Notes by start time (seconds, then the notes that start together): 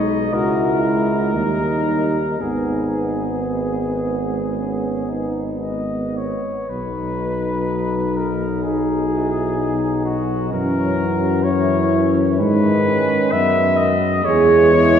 Already playing: B1 G#3 D#4 D#5
0.32 C#2 G#3 E4 F#4 A#4
0.82 E4
1.32 D#2 G3 D#4
2.40 G#1 B3 D#4 G#4
3.48 B3
4.57 C#4
5.08 D#4
5.62 B3 D#5
6.17 C#5
6.69 B1 F#3 D#4 B4
8.16 A#4
8.63 D#4 G#4
9.11 E4
9.57 D#4
10.05 F#4
10.50 F#2 E3 C#4 A#4
10.98 F#4
11.43 E3 C#4 E4 C#5
12.37 G#2 D#3 D#4 B4
12.41 G#3
12.87 C#4
13.32 F#2 B3 E5
13.77 D#5
14.25 E2 E3 G#3 G#4 C#5
14.73 E4